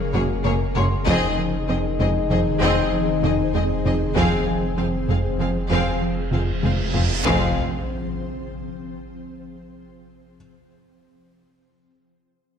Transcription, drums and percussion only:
0.13 taiko mid
0.44 taiko mid
0.75 taiko mid
1.06 taiko
1.99 taiko mid
2.30 taiko mid
3.23 taiko mid
3.54 taiko mid
3.85 taiko mid
4.16 taiko
5.08 taiko mid
5.40 taiko mid
6.32 taiko mid
6.63 taiko mid
6.94 taiko low
7.25 taiko

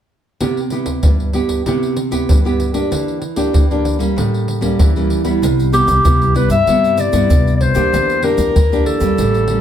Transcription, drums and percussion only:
0.41 pandeiro, surdo
0.57 pandeiro
0.70 pandeiro
0.86 pandeiro, surdo
1.03 pandeiro, surdo
1.20 pandeiro
1.33 pandeiro
1.49 pandeiro, surdo
1.66 pandeiro, surdo
1.83 pandeiro
1.96 pandeiro
2.12 pandeiro, surdo
2.29 pandeiro, surdo
2.46 pandeiro
2.60 pandeiro
2.74 pandeiro, surdo
2.92 pandeiro, surdo
3.08 pandeiro
3.22 pandeiro
3.36 pandeiro, surdo
3.54 pandeiro, surdo
3.71 pandeiro
3.85 pandeiro, surdo
4.00 pandeiro, surdo
4.18 pandeiro, surdo
4.34 pandeiro
4.48 pandeiro
4.62 pandeiro, surdo
4.79 pandeiro, surdo
4.96 pandeiro
5.10 pandeiro
5.25 pandeiro, surdo
5.43 pandeiro, shaker, surdo
5.59 pandeiro, shaker
5.73 pandeiro, shaker
5.88 pandeiro, shaker, surdo
6.05 pandeiro, shaker, surdo
6.22 pandeiro, shaker
6.36 pandeiro
6.50 pandeiro, shaker, surdo
6.67 pandeiro, shaker, surdo
6.84 pandeiro, shaker
6.98 pandeiro, shaker
7.13 pandeiro, shaker, surdo
7.30 pandeiro, shaker, surdo
7.47 pandeiro, shaker
7.61 pandeiro
7.75 pandeiro, shaker, surdo
7.94 pandeiro, shaker, surdo
8.10 pandeiro, shaker
8.22 pandeiro
8.38 pandeiro, shaker, surdo
8.56 pandeiro, shaker, surdo
8.73 pandeiro, shaker
8.86 pandeiro, surdo
9.00 pandeiro, shaker, surdo
9.18 pandeiro, shaker, surdo
9.34 pandeiro, shaker
9.48 pandeiro

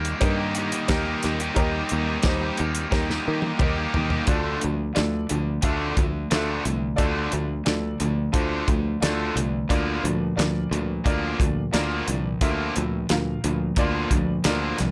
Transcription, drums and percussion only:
0.05 closed hi-hat
0.21 kick, closed hi-hat, cowbell
0.55 closed hi-hat
0.72 closed hi-hat
0.88 kick, snare, closed hi-hat, cowbell
1.23 snare, closed hi-hat
1.40 closed hi-hat
1.56 kick, closed hi-hat, cowbell
1.89 closed hi-hat
2.23 kick, snare, closed hi-hat, cowbell
2.57 closed hi-hat
2.75 closed hi-hat
2.92 kick, snare, cowbell
3.10 snare
3.42 high tom
3.59 kick, mid tom, cowbell
3.94 floor tom
4.10 floor tom
4.27 kick, closed hi-hat
4.61 closed hi-hat
4.96 snare, closed hi-hat
5.29 closed hi-hat
5.62 kick, closed hi-hat
5.97 kick, closed hi-hat
6.31 snare, closed hi-hat
6.65 closed hi-hat
6.98 kick, closed hi-hat
7.32 closed hi-hat
7.66 snare, closed hi-hat
8.00 closed hi-hat
8.34 kick, closed hi-hat
8.68 kick, closed hi-hat
9.03 snare, closed hi-hat
9.37 closed hi-hat
9.70 kick, closed hi-hat
10.05 closed hi-hat
10.39 snare, closed hi-hat
10.73 closed hi-hat
11.06 kick, closed hi-hat
11.40 kick, closed hi-hat
11.74 snare, closed hi-hat
12.08 closed hi-hat
12.41 kick, closed hi-hat
12.76 closed hi-hat
13.09 snare, closed hi-hat
13.44 closed hi-hat
13.76 kick, closed hi-hat
14.11 kick, closed hi-hat
14.44 snare, closed hi-hat
14.78 snare, closed hi-hat

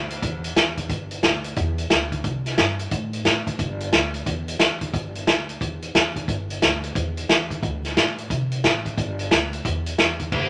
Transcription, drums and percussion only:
0.10 closed hi-hat
0.22 kick, closed hi-hat
0.44 closed hi-hat
0.56 snare, closed hi-hat
0.77 kick, closed hi-hat
0.89 kick, closed hi-hat
1.11 closed hi-hat
1.23 snare, closed hi-hat
1.44 closed hi-hat
1.56 kick, closed hi-hat
1.78 closed hi-hat
1.90 snare, closed hi-hat
2.12 kick, closed hi-hat
2.24 kick, closed hi-hat
2.46 snare, closed hi-hat
2.58 snare, closed hi-hat
2.79 closed hi-hat
2.91 kick, closed hi-hat
3.13 closed hi-hat
3.25 snare, closed hi-hat
3.47 kick, closed hi-hat
3.59 kick, closed hi-hat
3.80 closed hi-hat
3.93 snare, closed hi-hat
4.14 closed hi-hat
4.26 kick, closed hi-hat
4.48 closed hi-hat
4.59 snare, closed hi-hat
4.81 kick, closed hi-hat
4.94 kick, closed hi-hat
5.15 closed hi-hat
5.27 snare, closed hi-hat
5.49 closed hi-hat
5.61 kick, closed hi-hat
5.82 closed hi-hat
5.95 snare, closed hi-hat
6.16 kick, closed hi-hat
6.28 kick, closed hi-hat
6.50 closed hi-hat
6.62 snare, closed hi-hat
6.84 closed hi-hat
6.95 kick, closed hi-hat
7.17 closed hi-hat
7.29 snare, closed hi-hat
7.50 kick, closed hi-hat
7.63 kick, closed hi-hat
7.85 snare, closed hi-hat
7.97 snare, closed hi-hat
8.18 closed hi-hat
8.30 kick, closed hi-hat
8.52 closed hi-hat
8.64 snare, closed hi-hat
8.85 kick, closed hi-hat
8.98 kick, closed hi-hat
9.19 closed hi-hat
9.31 snare, closed hi-hat
9.53 closed hi-hat
9.65 kick, closed hi-hat
9.86 closed hi-hat
9.98 snare, closed hi-hat
10.20 kick, closed hi-hat
10.32 kick, crash

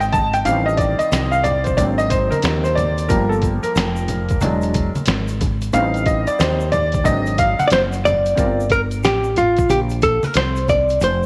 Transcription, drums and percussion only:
0.01 closed hi-hat, shaker
0.13 kick, closed hi-hat, high conga, low conga, shaker
0.33 closed hi-hat, shaker
0.45 closed hi-hat, shaker
0.69 shaker
0.77 kick, closed hi-hat, shaker
0.99 closed hi-hat, shaker
1.12 snare, closed hi-hat, shaker
1.32 shaker
1.44 closed hi-hat, low conga, shaker
1.64 kick, closed hi-hat, shaker
1.77 kick, closed hi-hat, high conga, shaker
1.99 closed hi-hat, shaker
2.10 kick, closed hi-hat, shaker
2.32 closed hi-hat, high conga, shaker
2.42 snare, closed hi-hat, shaker
2.65 closed hi-hat, shaker
2.77 closed hi-hat, high conga, low conga, shaker
2.98 closed hi-hat, shaker
3.09 kick, closed hi-hat, shaker
3.32 shaker
3.42 kick, closed hi-hat, shaker
3.63 closed hi-hat, shaker
3.76 snare, closed hi-hat, shaker
3.96 shaker
4.08 closed hi-hat, low conga, shaker
4.29 kick, closed hi-hat, shaker
4.41 closed hi-hat, high conga, shaker
4.62 closed hi-hat, shaker
4.74 kick, closed hi-hat, shaker
4.95 closed hi-hat, high conga, shaker
5.06 snare, closed hi-hat, shaker
5.28 closed hi-hat, shaker
5.41 kick, closed hi-hat, high conga, low conga, shaker
5.62 closed hi-hat, shaker
5.73 closed hi-hat, shaker
5.94 closed hi-hat, shaker
6.06 kick, closed hi-hat, shaker
6.27 closed hi-hat, shaker
6.40 snare, closed hi-hat, shaker
6.60 shaker
6.72 closed hi-hat, low conga, shaker
6.92 kick, closed hi-hat, shaker
7.05 kick, closed hi-hat, high conga, shaker
7.26 closed hi-hat, shaker
7.38 kick, closed hi-hat, shaker
7.60 closed hi-hat, high conga, shaker
7.70 snare, closed hi-hat, shaker
7.92 closed hi-hat, shaker
8.06 closed hi-hat, high conga, low conga, shaker
8.26 closed hi-hat, shaker
8.37 kick, closed hi-hat, shaker
8.60 shaker
8.70 kick, closed hi-hat, shaker
8.91 closed hi-hat, shaker
9.03 snare, closed hi-hat, shaker
9.24 shaker
9.36 closed hi-hat, low conga, shaker
9.57 kick, closed hi-hat, shaker
9.70 closed hi-hat, high conga, shaker
9.90 closed hi-hat, shaker
10.02 kick, closed hi-hat, shaker
10.23 closed hi-hat, high conga, shaker
10.34 snare, closed hi-hat, shaker
10.56 closed hi-hat, shaker
10.68 kick, closed hi-hat, low conga, shaker
10.89 closed hi-hat, shaker
11.00 closed hi-hat, shaker

